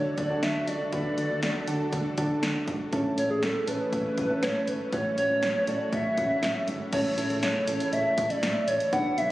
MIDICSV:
0, 0, Header, 1, 6, 480
1, 0, Start_track
1, 0, Tempo, 500000
1, 890, Time_signature, 4, 2, 24, 8
1, 8944, End_track
2, 0, Start_track
2, 0, Title_t, "Soft synth lead"
2, 0, Program_c, 0, 80
2, 0, Note_on_c, 0, 73, 103
2, 165, Note_off_c, 0, 73, 0
2, 170, Note_on_c, 0, 74, 92
2, 409, Note_on_c, 0, 76, 98
2, 423, Note_off_c, 0, 74, 0
2, 650, Note_on_c, 0, 74, 94
2, 664, Note_off_c, 0, 76, 0
2, 884, Note_off_c, 0, 74, 0
2, 889, Note_on_c, 0, 74, 98
2, 1811, Note_off_c, 0, 74, 0
2, 3052, Note_on_c, 0, 73, 89
2, 3163, Note_off_c, 0, 73, 0
2, 3173, Note_on_c, 0, 68, 79
2, 3284, Note_off_c, 0, 68, 0
2, 3295, Note_on_c, 0, 69, 85
2, 3533, Note_on_c, 0, 71, 85
2, 3547, Note_off_c, 0, 69, 0
2, 3769, Note_off_c, 0, 71, 0
2, 3775, Note_on_c, 0, 71, 95
2, 4254, Note_on_c, 0, 73, 96
2, 4268, Note_off_c, 0, 71, 0
2, 4497, Note_on_c, 0, 71, 91
2, 4512, Note_off_c, 0, 73, 0
2, 4730, Note_off_c, 0, 71, 0
2, 4736, Note_on_c, 0, 73, 103
2, 4956, Note_off_c, 0, 73, 0
2, 4976, Note_on_c, 0, 73, 110
2, 5454, Note_on_c, 0, 74, 97
2, 5468, Note_off_c, 0, 73, 0
2, 5694, Note_on_c, 0, 76, 105
2, 5708, Note_off_c, 0, 74, 0
2, 6412, Note_off_c, 0, 76, 0
2, 6653, Note_on_c, 0, 73, 105
2, 7098, Note_off_c, 0, 73, 0
2, 7130, Note_on_c, 0, 73, 99
2, 7609, Note_on_c, 0, 76, 106
2, 7623, Note_off_c, 0, 73, 0
2, 7970, Note_on_c, 0, 74, 105
2, 7985, Note_off_c, 0, 76, 0
2, 8330, Note_on_c, 0, 73, 99
2, 8345, Note_off_c, 0, 74, 0
2, 8564, Note_off_c, 0, 73, 0
2, 8570, Note_on_c, 0, 78, 118
2, 8809, Note_on_c, 0, 76, 115
2, 8824, Note_off_c, 0, 78, 0
2, 8944, Note_off_c, 0, 76, 0
2, 8944, End_track
3, 0, Start_track
3, 0, Title_t, "Synth keys"
3, 0, Program_c, 1, 88
3, 0, Note_on_c, 1, 62, 69
3, 0, Note_on_c, 1, 66, 64
3, 0, Note_on_c, 1, 69, 76
3, 99, Note_off_c, 1, 62, 0
3, 99, Note_off_c, 1, 66, 0
3, 99, Note_off_c, 1, 69, 0
3, 290, Note_on_c, 1, 69, 81
3, 291, Note_on_c, 1, 62, 71
3, 291, Note_on_c, 1, 66, 66
3, 698, Note_off_c, 1, 69, 0
3, 699, Note_off_c, 1, 62, 0
3, 699, Note_off_c, 1, 66, 0
3, 890, Note_on_c, 1, 66, 65
3, 891, Note_on_c, 1, 62, 69
3, 891, Note_on_c, 1, 71, 77
3, 1380, Note_off_c, 1, 62, 0
3, 1380, Note_off_c, 1, 66, 0
3, 1380, Note_off_c, 1, 71, 0
3, 1610, Note_on_c, 1, 69, 92
3, 1611, Note_on_c, 1, 62, 83
3, 1611, Note_on_c, 1, 66, 78
3, 1937, Note_off_c, 1, 62, 0
3, 1937, Note_off_c, 1, 66, 0
3, 1937, Note_off_c, 1, 69, 0
3, 2090, Note_on_c, 1, 62, 84
3, 2090, Note_on_c, 1, 66, 73
3, 2090, Note_on_c, 1, 69, 95
3, 2580, Note_off_c, 1, 62, 0
3, 2580, Note_off_c, 1, 66, 0
3, 2580, Note_off_c, 1, 69, 0
3, 2809, Note_on_c, 1, 61, 86
3, 2809, Note_on_c, 1, 64, 75
3, 2809, Note_on_c, 1, 69, 94
3, 3299, Note_off_c, 1, 61, 0
3, 3299, Note_off_c, 1, 64, 0
3, 3299, Note_off_c, 1, 69, 0
3, 3528, Note_on_c, 1, 61, 72
3, 3529, Note_on_c, 1, 64, 65
3, 3529, Note_on_c, 1, 69, 77
3, 3937, Note_off_c, 1, 61, 0
3, 3937, Note_off_c, 1, 64, 0
3, 3938, Note_off_c, 1, 69, 0
3, 4130, Note_on_c, 1, 61, 70
3, 4130, Note_on_c, 1, 64, 67
3, 4130, Note_on_c, 1, 69, 78
3, 4538, Note_off_c, 1, 61, 0
3, 4538, Note_off_c, 1, 64, 0
3, 4538, Note_off_c, 1, 69, 0
3, 4730, Note_on_c, 1, 61, 68
3, 4730, Note_on_c, 1, 64, 65
3, 4730, Note_on_c, 1, 66, 81
3, 5220, Note_off_c, 1, 61, 0
3, 5220, Note_off_c, 1, 64, 0
3, 5220, Note_off_c, 1, 66, 0
3, 5451, Note_on_c, 1, 61, 67
3, 5451, Note_on_c, 1, 64, 61
3, 5451, Note_on_c, 1, 69, 76
3, 5777, Note_off_c, 1, 61, 0
3, 5777, Note_off_c, 1, 64, 0
3, 5777, Note_off_c, 1, 69, 0
3, 5929, Note_on_c, 1, 64, 64
3, 5930, Note_on_c, 1, 61, 69
3, 5931, Note_on_c, 1, 66, 74
3, 6419, Note_off_c, 1, 64, 0
3, 6420, Note_off_c, 1, 61, 0
3, 6420, Note_off_c, 1, 66, 0
3, 6651, Note_on_c, 1, 69, 79
3, 6652, Note_on_c, 1, 61, 73
3, 6652, Note_on_c, 1, 64, 64
3, 6814, Note_off_c, 1, 61, 0
3, 6814, Note_off_c, 1, 64, 0
3, 6814, Note_off_c, 1, 69, 0
3, 6892, Note_on_c, 1, 61, 68
3, 6892, Note_on_c, 1, 64, 64
3, 6893, Note_on_c, 1, 69, 78
3, 7218, Note_off_c, 1, 61, 0
3, 7218, Note_off_c, 1, 64, 0
3, 7218, Note_off_c, 1, 69, 0
3, 7372, Note_on_c, 1, 61, 69
3, 7372, Note_on_c, 1, 64, 63
3, 7372, Note_on_c, 1, 69, 76
3, 8024, Note_off_c, 1, 61, 0
3, 8024, Note_off_c, 1, 64, 0
3, 8024, Note_off_c, 1, 69, 0
3, 8569, Note_on_c, 1, 62, 75
3, 8569, Note_on_c, 1, 66, 68
3, 8570, Note_on_c, 1, 71, 83
3, 8815, Note_off_c, 1, 62, 0
3, 8815, Note_off_c, 1, 66, 0
3, 8815, Note_off_c, 1, 71, 0
3, 8944, End_track
4, 0, Start_track
4, 0, Title_t, "String machine"
4, 0, Program_c, 2, 50
4, 0, Note_on_c, 2, 50, 77
4, 0, Note_on_c, 2, 62, 71
4, 0, Note_on_c, 2, 66, 81
4, 0, Note_on_c, 2, 69, 85
4, 2771, Note_off_c, 2, 50, 0
4, 2771, Note_off_c, 2, 66, 0
4, 2772, Note_off_c, 2, 62, 0
4, 2772, Note_off_c, 2, 69, 0
4, 2810, Note_on_c, 2, 57, 78
4, 2810, Note_on_c, 2, 64, 83
4, 2811, Note_on_c, 2, 61, 72
4, 4711, Note_off_c, 2, 64, 0
4, 4731, Note_on_c, 2, 66, 83
4, 6612, Note_off_c, 2, 57, 0
4, 6612, Note_off_c, 2, 61, 0
4, 6632, Note_off_c, 2, 66, 0
4, 6650, Note_on_c, 2, 57, 76
4, 6651, Note_on_c, 2, 49, 71
4, 6651, Note_on_c, 2, 64, 86
4, 8551, Note_off_c, 2, 49, 0
4, 8551, Note_off_c, 2, 57, 0
4, 8551, Note_off_c, 2, 64, 0
4, 8569, Note_on_c, 2, 54, 77
4, 8570, Note_on_c, 2, 59, 72
4, 8570, Note_on_c, 2, 62, 84
4, 8944, Note_off_c, 2, 54, 0
4, 8944, Note_off_c, 2, 59, 0
4, 8944, Note_off_c, 2, 62, 0
4, 8944, End_track
5, 0, Start_track
5, 0, Title_t, "FM bass"
5, 0, Program_c, 3, 39
5, 170, Note_on_c, 3, 38, 87
5, 272, Note_off_c, 3, 38, 0
5, 409, Note_on_c, 3, 38, 105
5, 511, Note_off_c, 3, 38, 0
5, 649, Note_on_c, 3, 37, 87
5, 751, Note_off_c, 3, 37, 0
5, 889, Note_on_c, 3, 38, 100
5, 991, Note_off_c, 3, 38, 0
5, 1130, Note_on_c, 3, 38, 93
5, 1231, Note_off_c, 3, 38, 0
5, 1249, Note_on_c, 3, 38, 91
5, 1351, Note_off_c, 3, 38, 0
5, 1368, Note_on_c, 3, 38, 97
5, 1471, Note_off_c, 3, 38, 0
5, 1610, Note_on_c, 3, 38, 97
5, 1711, Note_off_c, 3, 38, 0
5, 1849, Note_on_c, 3, 38, 102
5, 1951, Note_off_c, 3, 38, 0
5, 2090, Note_on_c, 3, 38, 98
5, 2191, Note_off_c, 3, 38, 0
5, 2330, Note_on_c, 3, 38, 100
5, 2431, Note_off_c, 3, 38, 0
5, 2569, Note_on_c, 3, 32, 93
5, 2671, Note_off_c, 3, 32, 0
5, 2810, Note_on_c, 3, 33, 98
5, 2911, Note_off_c, 3, 33, 0
5, 3049, Note_on_c, 3, 33, 98
5, 3151, Note_off_c, 3, 33, 0
5, 3171, Note_on_c, 3, 33, 99
5, 3272, Note_off_c, 3, 33, 0
5, 3291, Note_on_c, 3, 33, 108
5, 3392, Note_off_c, 3, 33, 0
5, 3531, Note_on_c, 3, 33, 97
5, 3632, Note_off_c, 3, 33, 0
5, 3769, Note_on_c, 3, 33, 103
5, 3871, Note_off_c, 3, 33, 0
5, 4010, Note_on_c, 3, 33, 89
5, 4111, Note_off_c, 3, 33, 0
5, 4250, Note_on_c, 3, 33, 98
5, 4352, Note_off_c, 3, 33, 0
5, 4489, Note_on_c, 3, 32, 83
5, 4591, Note_off_c, 3, 32, 0
5, 4729, Note_on_c, 3, 33, 103
5, 4831, Note_off_c, 3, 33, 0
5, 4970, Note_on_c, 3, 33, 90
5, 5072, Note_off_c, 3, 33, 0
5, 5089, Note_on_c, 3, 33, 96
5, 5191, Note_off_c, 3, 33, 0
5, 5211, Note_on_c, 3, 33, 92
5, 5312, Note_off_c, 3, 33, 0
5, 5451, Note_on_c, 3, 33, 101
5, 5552, Note_off_c, 3, 33, 0
5, 5689, Note_on_c, 3, 33, 105
5, 5791, Note_off_c, 3, 33, 0
5, 5930, Note_on_c, 3, 33, 97
5, 6031, Note_off_c, 3, 33, 0
5, 6169, Note_on_c, 3, 33, 96
5, 6271, Note_off_c, 3, 33, 0
5, 6410, Note_on_c, 3, 32, 95
5, 6511, Note_off_c, 3, 32, 0
5, 6650, Note_on_c, 3, 33, 97
5, 6751, Note_off_c, 3, 33, 0
5, 6889, Note_on_c, 3, 33, 101
5, 6991, Note_off_c, 3, 33, 0
5, 7010, Note_on_c, 3, 33, 99
5, 7111, Note_off_c, 3, 33, 0
5, 7129, Note_on_c, 3, 33, 95
5, 7231, Note_off_c, 3, 33, 0
5, 7369, Note_on_c, 3, 33, 102
5, 7471, Note_off_c, 3, 33, 0
5, 7609, Note_on_c, 3, 33, 100
5, 7711, Note_off_c, 3, 33, 0
5, 7851, Note_on_c, 3, 33, 95
5, 7952, Note_off_c, 3, 33, 0
5, 8088, Note_on_c, 3, 33, 108
5, 8191, Note_off_c, 3, 33, 0
5, 8328, Note_on_c, 3, 33, 89
5, 8431, Note_off_c, 3, 33, 0
5, 8571, Note_on_c, 3, 35, 98
5, 8672, Note_off_c, 3, 35, 0
5, 8808, Note_on_c, 3, 35, 102
5, 8911, Note_off_c, 3, 35, 0
5, 8944, End_track
6, 0, Start_track
6, 0, Title_t, "Drums"
6, 169, Note_on_c, 9, 42, 72
6, 170, Note_on_c, 9, 36, 85
6, 265, Note_off_c, 9, 42, 0
6, 266, Note_off_c, 9, 36, 0
6, 410, Note_on_c, 9, 38, 107
6, 410, Note_on_c, 9, 42, 76
6, 506, Note_off_c, 9, 38, 0
6, 506, Note_off_c, 9, 42, 0
6, 648, Note_on_c, 9, 42, 71
6, 744, Note_off_c, 9, 42, 0
6, 888, Note_on_c, 9, 42, 59
6, 889, Note_on_c, 9, 36, 99
6, 984, Note_off_c, 9, 42, 0
6, 985, Note_off_c, 9, 36, 0
6, 1130, Note_on_c, 9, 42, 73
6, 1226, Note_off_c, 9, 42, 0
6, 1369, Note_on_c, 9, 38, 101
6, 1369, Note_on_c, 9, 42, 64
6, 1465, Note_off_c, 9, 38, 0
6, 1465, Note_off_c, 9, 42, 0
6, 1608, Note_on_c, 9, 42, 82
6, 1704, Note_off_c, 9, 42, 0
6, 1849, Note_on_c, 9, 36, 84
6, 1849, Note_on_c, 9, 42, 66
6, 1945, Note_off_c, 9, 36, 0
6, 1945, Note_off_c, 9, 42, 0
6, 2089, Note_on_c, 9, 42, 72
6, 2090, Note_on_c, 9, 36, 87
6, 2185, Note_off_c, 9, 42, 0
6, 2186, Note_off_c, 9, 36, 0
6, 2330, Note_on_c, 9, 38, 104
6, 2331, Note_on_c, 9, 42, 75
6, 2426, Note_off_c, 9, 38, 0
6, 2427, Note_off_c, 9, 42, 0
6, 2569, Note_on_c, 9, 36, 93
6, 2569, Note_on_c, 9, 42, 71
6, 2665, Note_off_c, 9, 36, 0
6, 2665, Note_off_c, 9, 42, 0
6, 2809, Note_on_c, 9, 42, 62
6, 2810, Note_on_c, 9, 36, 98
6, 2905, Note_off_c, 9, 42, 0
6, 2906, Note_off_c, 9, 36, 0
6, 3050, Note_on_c, 9, 42, 76
6, 3146, Note_off_c, 9, 42, 0
6, 3289, Note_on_c, 9, 42, 62
6, 3290, Note_on_c, 9, 38, 97
6, 3385, Note_off_c, 9, 42, 0
6, 3386, Note_off_c, 9, 38, 0
6, 3528, Note_on_c, 9, 42, 81
6, 3624, Note_off_c, 9, 42, 0
6, 3769, Note_on_c, 9, 36, 84
6, 3769, Note_on_c, 9, 42, 64
6, 3865, Note_off_c, 9, 36, 0
6, 3865, Note_off_c, 9, 42, 0
6, 4009, Note_on_c, 9, 42, 72
6, 4010, Note_on_c, 9, 36, 83
6, 4105, Note_off_c, 9, 42, 0
6, 4106, Note_off_c, 9, 36, 0
6, 4249, Note_on_c, 9, 38, 105
6, 4250, Note_on_c, 9, 42, 78
6, 4345, Note_off_c, 9, 38, 0
6, 4346, Note_off_c, 9, 42, 0
6, 4488, Note_on_c, 9, 42, 69
6, 4584, Note_off_c, 9, 42, 0
6, 4728, Note_on_c, 9, 42, 60
6, 4730, Note_on_c, 9, 36, 102
6, 4824, Note_off_c, 9, 42, 0
6, 4826, Note_off_c, 9, 36, 0
6, 4970, Note_on_c, 9, 42, 73
6, 5066, Note_off_c, 9, 42, 0
6, 5209, Note_on_c, 9, 42, 63
6, 5210, Note_on_c, 9, 38, 100
6, 5305, Note_off_c, 9, 42, 0
6, 5306, Note_off_c, 9, 38, 0
6, 5447, Note_on_c, 9, 42, 81
6, 5543, Note_off_c, 9, 42, 0
6, 5689, Note_on_c, 9, 36, 86
6, 5689, Note_on_c, 9, 42, 64
6, 5785, Note_off_c, 9, 36, 0
6, 5785, Note_off_c, 9, 42, 0
6, 5928, Note_on_c, 9, 42, 76
6, 5930, Note_on_c, 9, 36, 84
6, 6024, Note_off_c, 9, 42, 0
6, 6026, Note_off_c, 9, 36, 0
6, 6169, Note_on_c, 9, 38, 105
6, 6170, Note_on_c, 9, 42, 74
6, 6265, Note_off_c, 9, 38, 0
6, 6266, Note_off_c, 9, 42, 0
6, 6409, Note_on_c, 9, 42, 70
6, 6505, Note_off_c, 9, 42, 0
6, 6649, Note_on_c, 9, 42, 62
6, 6649, Note_on_c, 9, 49, 88
6, 6650, Note_on_c, 9, 36, 107
6, 6745, Note_off_c, 9, 42, 0
6, 6745, Note_off_c, 9, 49, 0
6, 6746, Note_off_c, 9, 36, 0
6, 6891, Note_on_c, 9, 42, 77
6, 6987, Note_off_c, 9, 42, 0
6, 7010, Note_on_c, 9, 42, 50
6, 7106, Note_off_c, 9, 42, 0
6, 7130, Note_on_c, 9, 38, 100
6, 7130, Note_on_c, 9, 42, 64
6, 7226, Note_off_c, 9, 38, 0
6, 7226, Note_off_c, 9, 42, 0
6, 7368, Note_on_c, 9, 42, 86
6, 7464, Note_off_c, 9, 42, 0
6, 7492, Note_on_c, 9, 42, 49
6, 7588, Note_off_c, 9, 42, 0
6, 7610, Note_on_c, 9, 42, 67
6, 7706, Note_off_c, 9, 42, 0
6, 7850, Note_on_c, 9, 42, 76
6, 7851, Note_on_c, 9, 36, 88
6, 7946, Note_off_c, 9, 42, 0
6, 7947, Note_off_c, 9, 36, 0
6, 7969, Note_on_c, 9, 42, 57
6, 8065, Note_off_c, 9, 42, 0
6, 8091, Note_on_c, 9, 38, 107
6, 8091, Note_on_c, 9, 42, 80
6, 8187, Note_off_c, 9, 38, 0
6, 8187, Note_off_c, 9, 42, 0
6, 8330, Note_on_c, 9, 42, 71
6, 8426, Note_off_c, 9, 42, 0
6, 8451, Note_on_c, 9, 42, 59
6, 8547, Note_off_c, 9, 42, 0
6, 8570, Note_on_c, 9, 36, 106
6, 8570, Note_on_c, 9, 42, 62
6, 8666, Note_off_c, 9, 36, 0
6, 8666, Note_off_c, 9, 42, 0
6, 8811, Note_on_c, 9, 42, 79
6, 8907, Note_off_c, 9, 42, 0
6, 8944, End_track
0, 0, End_of_file